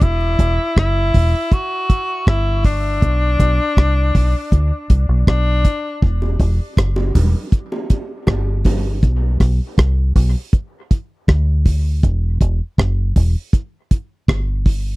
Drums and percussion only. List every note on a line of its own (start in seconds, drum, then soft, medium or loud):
0.01 kick loud
0.01 hi-hat pedal medium
0.21 high bongo medium
0.39 kick medium
0.39 closed hi-hat medium
0.77 kick medium
0.77 cross-stick loud
1.14 kick medium
1.14 open hi-hat medium
1.52 kick loud
1.52 hi-hat pedal medium
1.90 kick loud
1.90 closed hi-hat medium
2.27 kick loud
2.27 cross-stick loud
2.64 kick loud
2.64 open hi-hat medium
3.02 kick loud
3.02 hi-hat pedal medium
3.40 kick medium
3.40 closed hi-hat medium
3.77 kick loud
3.77 cross-stick loud
4.15 kick medium
4.15 open hi-hat medium
4.52 kick loud
4.52 hi-hat pedal medium
4.90 kick loud
4.90 closed hi-hat medium
5.27 kick loud
5.27 cross-stick loud
5.65 kick medium
5.65 closed hi-hat medium
6.02 kick loud
6.22 high bongo medium
6.40 kick medium
6.40 open hi-hat soft
6.77 kick medium
6.77 cross-stick loud
6.77 hi-hat pedal medium
6.96 high bongo medium
7.15 kick medium
7.15 open hi-hat medium
7.15 low bongo medium
7.52 kick loud
7.52 hi-hat pedal medium
7.72 high bongo medium
7.90 kick medium
7.90 closed hi-hat medium
7.90 high bongo medium
8.27 kick loud
8.27 cross-stick loud
8.27 high bongo medium
8.65 kick medium
8.65 open hi-hat medium
8.65 high bongo medium
8.65 low bongo medium
9.03 kick loud
9.03 hi-hat pedal medium
9.40 kick medium
9.40 cross-stick medium
9.40 open hi-hat soft
9.78 kick medium
9.78 cross-stick loud
9.78 hi-hat pedal medium
10.16 kick medium
10.16 open hi-hat medium
10.53 kick loud
10.53 hi-hat pedal medium
10.91 kick loud
10.91 closed hi-hat medium
11.28 kick loud
11.28 cross-stick loud
11.66 kick medium
11.66 open hi-hat medium
12.03 kick loud
12.03 hi-hat pedal medium
12.41 kick medium
12.41 closed hi-hat medium
12.78 kick medium
12.78 cross-stick loud
13.16 kick medium
13.16 open hi-hat medium
13.53 kick loud
13.53 hi-hat pedal medium
13.91 kick medium
13.91 closed hi-hat medium
14.28 kick loud
14.28 cross-stick loud
14.66 kick loud
14.66 open hi-hat medium